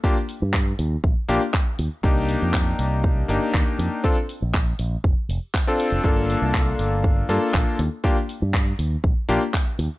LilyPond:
<<
  \new Staff \with { instrumentName = "Electric grand piano" } { \time 4/4 \key ees \lydian \tempo 4 = 120 <bes d' f' g'>16 r2 r16 <bes d' f' g'>16 r4 r16 | <bes d' ees' g'>2~ <bes d' ees' g'>8 <bes d' ees' g'>4. | <c' d' f' a'>16 r2. <c' d' f' a'>8. | <bes d' f' a'>2~ <bes d' f' a'>8 <bes d' f' a'>4 r8 |
<bes d' f' g'>16 r2 r16 <bes d' f' g'>16 r4 r16 | }
  \new Staff \with { instrumentName = "Fingered electric bass" } { \clef bass \time 4/4 \key ees \lydian r8. g,8 r16 ees,16 r16 bes,,16 r16 bes,,16 r8. ees,16 r16 | c,8 r16 f,8 r16 c,8. r16 g,,16 r16 ees,16 r16 f,16 r16 | r8. bes,,8 r16 bes,,16 r16 f,,16 r16 f,,16 r4 f,,16 | g,,8 r16 c,8 r16 g,,8. r16 g,16 r16 bes,,16 r16 ees,16 r16 |
r8. g,8 r16 ees,16 r16 bes,,16 r16 bes,,16 r8. ees,16 r16 | }
  \new DrumStaff \with { instrumentName = "Drums" } \drummode { \time 4/4 bd8 hho8 <hc bd>8 hho8 bd8 hho8 <hc bd>8 hho8 | bd8 hho8 <hc bd>8 hho8 bd8 hho8 <hc bd>8 hho8 | bd8 hho8 <hc bd>8 hho8 bd8 hho8 <hc bd>8 hho8 | bd8 hho8 <hc bd>8 hho8 bd8 hho8 <hc bd>8 hho8 |
bd8 hho8 <hc bd>8 hho8 bd8 hho8 <hc bd>8 hho8 | }
>>